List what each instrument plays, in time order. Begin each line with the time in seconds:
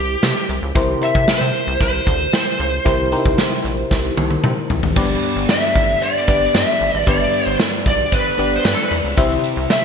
Already playing: analog synth bass C2, fm electric piano C3 E4 G4 A#4 C5, lead electric guitar G4
0.23 analog synth bass C3, snare, closed hi-hat, cowbell
0.49 analog synth bass C2, closed hi-hat
0.62 analog synth bass C#2
0.75 analog synth bass C2, fm electric piano C3 E4 G4 A#4 C5, kick, closed hi-hat, cowbell
1.01 fm electric piano E4 G4 A#4 C5, lead electric guitar E5, closed hi-hat
1.15 analog synth bass C3, kick
1.28 analog synth bass C3, lead electric guitar C5, snare, closed hi-hat, tambourine, cowbell
1.41 analog synth bass C3
1.54 closed hi-hat
1.67 analog synth bass C2, closed hi-hat
1.81 analog synth bass C2, lead electric guitar C5, kick, closed hi-hat, cowbell
2.07 analog synth bass D2, kick, closed hi-hat
2.20 closed hi-hat
2.33 snare, closed hi-hat, tambourine, cowbell
2.59 analog synth bass C#2, closed hi-hat
2.85 analog synth bass C2, fm electric piano C3 E4 G4 A#4 C5, kick, closed hi-hat, cowbell
3.12 fm electric piano D#4 G4 A#4 C5, closed hi-hat
3.18 fm electric piano E4
3.25 analog synth bass C2, kick
3.38 snare, closed hi-hat, tambourine, cowbell
3.65 analog synth bass A#1, closed hi-hat
3.91 analog synth bass C2, kick, snare, cowbell
4.17 analog synth bass C2, high tom
4.30 high tom
4.44 analog synth bass C3, mid tom, cowbell
4.70 analog synth bass C2, floor tom
4.83 analog synth bass G#1, floor tom
4.96 analog synth bass G1, distorted electric guitar G2 D3 G3, fm electric piano G2 B3 D4 G4 B4 D5, kick, crash, cowbell
5.23 closed hi-hat
5.36 analog synth bass G1
5.49 lead electric guitar E5, snare, closed hi-hat, tambourine, cowbell
5.75 analog synth bass A1, kick, closed hi-hat
6.01 distorted electric guitar G2 D3 G3, lead electric guitar D5, closed hi-hat, cowbell
6.27 analog synth bass G1, distorted electric guitar D3 G3, fm electric piano B3 D4 G4 B4 D5, kick, closed hi-hat
6.54 analog synth bass G2, lead electric guitar E5, snare, closed hi-hat, tambourine, cowbell
6.81 analog synth bass G1, open hi-hat
6.94 analog synth bass G#1
7.06 analog synth bass G1, distorted electric guitar G2 D3 G3, fm electric piano G2 B3 D4 G4 B4 D5, lead electric guitar D5, kick, closed hi-hat, cowbell
7.33 closed hi-hat
7.47 analog synth bass G1
7.59 snare, closed hi-hat, tambourine, cowbell
7.86 analog synth bass B1, lead electric guitar D5, kick, closed hi-hat
8.12 distorted electric guitar G2 D3 G3, lead electric guitar B4, kick, closed hi-hat, cowbell
8.38 analog synth bass G1, distorted electric guitar D3 G3, fm electric piano B3 D4 G4 B4 D5, closed hi-hat
8.56 lead electric guitar C5
8.65 analog synth bass G2, lead electric guitar B4, snare, closed hi-hat, tambourine, cowbell
8.74 lead electric guitar A4
8.83 lead electric guitar B4
8.91 analog synth bass E2, open hi-hat
9.04 analog synth bass C#2
9.17 analog synth bass C2, distorted electric guitar C3 G3 C4, fm electric piano C3 C4 E4 G4 C5 E5, kick, closed hi-hat, cowbell
9.44 closed hi-hat
9.57 analog synth bass C2
9.70 lead electric guitar E5, snare, closed hi-hat, tambourine, cowbell